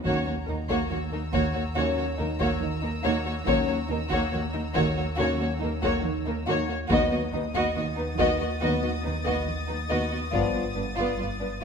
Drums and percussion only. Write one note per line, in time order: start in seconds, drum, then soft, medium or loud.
0.06 taiko medium
0.69 taiko medium
1.34 taiko medium
2.40 taiko medium
3.47 taiko medium
4.11 taiko medium
4.76 taiko medium
5.83 taiko medium
6.90 taiko medium
7.54 taiko medium
8.19 taiko medium
9.27 taiko medium
10.34 taiko medium
10.98 taiko medium